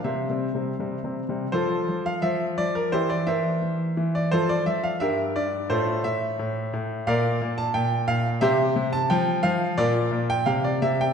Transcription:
<<
  \new Staff \with { instrumentName = "Grand piano" } { \time 2/4 \key f \major \tempo 4 = 87 <c'' e''>4. r8 | <f' a' c''>8. f''16 e''8 d''16 bes'16 | <e' g' c''>16 d''16 <bes' c'' e''>4~ <bes' c'' e''>16 d''16 | <f' a' c''>16 d''16 e''16 f''16 <g' bes' e''>8 d''8 |
<f' a' c''>8 e''4 r8 | <bes' d'' f''>8. a''16 g''8 f''8 | <g' c'' e''>8. a''16 g''8 f''8 | <f' bes' d''>8. g''16 f''16 d''16 e''16 g''16 | }
  \new Staff \with { instrumentName = "Grand piano" } { \clef bass \time 2/4 \key f \major \tuplet 3/2 { c8 <c g c'>8 <c g c'>8 <c g c'>8 <c g c'>8 <c g c'>8 } | f8 f8 f8 f8 | e8 e8 e8 e8 | f8 f8 g,8 g,8 |
a,8 a,8 a,8 a,8 | bes,8 bes,8 bes,8 bes,8 | c8 c8 f8 f8 | bes,8 bes,8 c8 c8 | }
>>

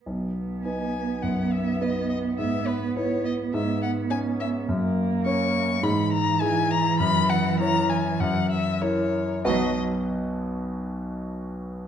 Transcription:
<<
  \new Staff \with { instrumentName = "Violin" } { \time 4/4 \key b \major \tempo 4 = 102 r4 gis''4 fis''8 e''8 dis''8 dis''8 | e''8 b'8 cis''8 dis''8 e''8 fis''8 gis''8 e''8 | r4 cis'''4 b''8 ais''8 gis''8 ais''8 | b''8 fis''8 ais''8 gis''8 fis''8 e''8 cis''4 |
dis''8 r2. r8 | }
  \new Staff \with { instrumentName = "Grand piano" } { \time 4/4 \key b \major b,,4 <b dis' b'>4 fis,4 <b dis' b'>4 | gis,4 <e' b'>4 gis,4 <cis' cis''>4 | fis,4 <cis' cis''>4 gis,4 <e' gis'>4 | fis,4 <e' cis''>4 fis,4 <e' ais'>4 |
<b,, b, b fis' b' fis''>8 r2. r8 | }
  \new Staff \with { instrumentName = "Cello" } { \clef bass \time 4/4 \key b \major b1~ | b1 | ais2 e2~ | e2.~ e8 r8 |
fis8 r2. r8 | }
>>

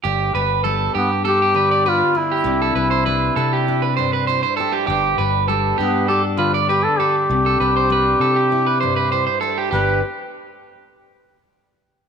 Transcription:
<<
  \new Staff \with { instrumentName = "Clean electric guitar" } { \time 4/4 \key g \major \tempo 4 = 99 g'8 b'8 a'8 g'8 a'16 g'16 b'16 d''16 b'8 r16 g'16~ | g'16 a'16 b'16 c''16 b'8 a'16 g'8 b'16 c''16 b'16 c''16 c''16 a'16 g'16 | g'8 b'8 a'8 g'8 a'16 r16 b'16 d''16 b'8 a'16 r16 | r16 a'16 b'16 c''16 b'8 a'16 g'8 b'16 c''16 b'16 c''16 c''16 a'16 g'16 |
g'8 r2. r8 | }
  \new Staff \with { instrumentName = "Duduk" } { \time 4/4 \key g \major r4. b8 g'4 f'8 e'8~ | e'2~ e'8 r4. | r4. b8 g'8 f'8 g'16 a'16 g'8~ | g'2.~ g'8 r8 |
b'8 r2. r8 | }
  \new Staff \with { instrumentName = "Steel-string acoustic guitar" } { \time 4/4 \key g \major << { r8 b4. d'4 d'8 d'8 | <g d'>8 d'4 d'8 d'4 e'8 g'8~ | g'8 b4 d'8 d'4 d'8 d'8~ | d'8 d'4 e'8 e'4 e'8 g'8 |
<g b d' b'>8 r2. r8 | } \\ { g,4 g4. d4. | c4 g4. g,4. | g,4 g4. d4. | c4 g4. g,4. |
g,8 r2. r8 | } >> }
  \new Staff \with { instrumentName = "Fingered electric bass" } { \clef bass \time 4/4 \key g \major g,,8 g,,4 g,2 r8 | c,8 c,4 c2 r8 | g,,8 g,,4 g,2 r8 | c,8 c,4 c2 r8 |
g,,8 r2. r8 | }
>>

